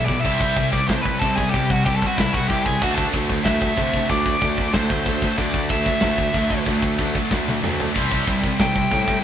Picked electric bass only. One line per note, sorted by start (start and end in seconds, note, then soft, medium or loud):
0.25 0.73 C2 loud
0.90 1.14 C2 loud
1.22 1.46 C2 loud
1.54 2.02 C2 loud
2.18 2.43 C2 loud
2.50 2.74 C2 medium
2.82 3.06 D2 loud
3.13 3.38 D2 medium
3.45 3.70 D2 loud
3.78 4.02 C3 loud
4.10 4.34 D2 loud
4.42 4.67 D2 loud
4.74 5.23 D2 loud
5.38 5.87 D2 medium
6.02 6.27 D2 medium
6.34 6.59 D2 loud
6.67 7.16 D2 medium
7.31 7.56 D2 loud
7.63 7.88 D2 medium
7.96 8.21 C2 loud
8.27 8.52 C2 medium
8.60 8.85 C2 medium
8.92 9.17 A2 medium